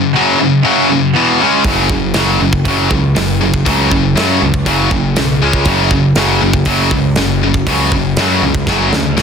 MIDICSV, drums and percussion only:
0, 0, Header, 1, 2, 480
1, 0, Start_track
1, 0, Tempo, 502513
1, 1581, Time_signature, 4, 2, 24, 8
1, 8810, End_track
2, 0, Start_track
2, 0, Title_t, "Drums"
2, 1571, Note_on_c, 9, 36, 105
2, 1571, Note_on_c, 9, 46, 52
2, 1666, Note_off_c, 9, 36, 0
2, 1666, Note_off_c, 9, 46, 0
2, 1810, Note_on_c, 9, 36, 91
2, 1905, Note_off_c, 9, 36, 0
2, 2043, Note_on_c, 9, 46, 54
2, 2047, Note_on_c, 9, 38, 102
2, 2139, Note_off_c, 9, 46, 0
2, 2143, Note_off_c, 9, 38, 0
2, 2414, Note_on_c, 9, 36, 83
2, 2509, Note_off_c, 9, 36, 0
2, 2535, Note_on_c, 9, 36, 102
2, 2537, Note_on_c, 9, 46, 55
2, 2630, Note_off_c, 9, 36, 0
2, 2632, Note_off_c, 9, 46, 0
2, 2777, Note_on_c, 9, 36, 84
2, 2872, Note_off_c, 9, 36, 0
2, 3020, Note_on_c, 9, 46, 65
2, 3024, Note_on_c, 9, 38, 118
2, 3116, Note_off_c, 9, 46, 0
2, 3119, Note_off_c, 9, 38, 0
2, 3378, Note_on_c, 9, 36, 89
2, 3473, Note_off_c, 9, 36, 0
2, 3499, Note_on_c, 9, 36, 92
2, 3505, Note_on_c, 9, 46, 60
2, 3595, Note_off_c, 9, 36, 0
2, 3600, Note_off_c, 9, 46, 0
2, 3739, Note_on_c, 9, 36, 87
2, 3835, Note_off_c, 9, 36, 0
2, 3986, Note_on_c, 9, 46, 56
2, 3989, Note_on_c, 9, 38, 111
2, 4081, Note_off_c, 9, 46, 0
2, 4085, Note_off_c, 9, 38, 0
2, 4335, Note_on_c, 9, 36, 88
2, 4430, Note_off_c, 9, 36, 0
2, 4453, Note_on_c, 9, 36, 97
2, 4457, Note_on_c, 9, 46, 61
2, 4549, Note_off_c, 9, 36, 0
2, 4552, Note_off_c, 9, 46, 0
2, 4691, Note_on_c, 9, 36, 84
2, 4786, Note_off_c, 9, 36, 0
2, 4931, Note_on_c, 9, 46, 64
2, 4935, Note_on_c, 9, 38, 117
2, 5027, Note_off_c, 9, 46, 0
2, 5030, Note_off_c, 9, 38, 0
2, 5286, Note_on_c, 9, 36, 86
2, 5381, Note_off_c, 9, 36, 0
2, 5398, Note_on_c, 9, 46, 58
2, 5404, Note_on_c, 9, 36, 96
2, 5493, Note_off_c, 9, 46, 0
2, 5499, Note_off_c, 9, 36, 0
2, 5643, Note_on_c, 9, 36, 93
2, 5739, Note_off_c, 9, 36, 0
2, 5879, Note_on_c, 9, 46, 56
2, 5883, Note_on_c, 9, 38, 110
2, 5975, Note_off_c, 9, 46, 0
2, 5979, Note_off_c, 9, 38, 0
2, 6242, Note_on_c, 9, 36, 86
2, 6337, Note_off_c, 9, 36, 0
2, 6354, Note_on_c, 9, 46, 55
2, 6361, Note_on_c, 9, 36, 96
2, 6450, Note_off_c, 9, 46, 0
2, 6456, Note_off_c, 9, 36, 0
2, 6601, Note_on_c, 9, 36, 83
2, 6697, Note_off_c, 9, 36, 0
2, 6836, Note_on_c, 9, 46, 59
2, 6840, Note_on_c, 9, 38, 115
2, 6932, Note_off_c, 9, 46, 0
2, 6936, Note_off_c, 9, 38, 0
2, 7204, Note_on_c, 9, 36, 87
2, 7300, Note_off_c, 9, 36, 0
2, 7323, Note_on_c, 9, 36, 97
2, 7324, Note_on_c, 9, 46, 62
2, 7419, Note_off_c, 9, 36, 0
2, 7420, Note_off_c, 9, 46, 0
2, 7563, Note_on_c, 9, 36, 88
2, 7659, Note_off_c, 9, 36, 0
2, 7800, Note_on_c, 9, 46, 60
2, 7804, Note_on_c, 9, 38, 109
2, 7896, Note_off_c, 9, 46, 0
2, 7900, Note_off_c, 9, 38, 0
2, 8162, Note_on_c, 9, 36, 92
2, 8258, Note_off_c, 9, 36, 0
2, 8281, Note_on_c, 9, 36, 98
2, 8282, Note_on_c, 9, 38, 65
2, 8376, Note_off_c, 9, 36, 0
2, 8378, Note_off_c, 9, 38, 0
2, 8528, Note_on_c, 9, 38, 76
2, 8623, Note_off_c, 9, 38, 0
2, 8766, Note_on_c, 9, 38, 89
2, 8810, Note_off_c, 9, 38, 0
2, 8810, End_track
0, 0, End_of_file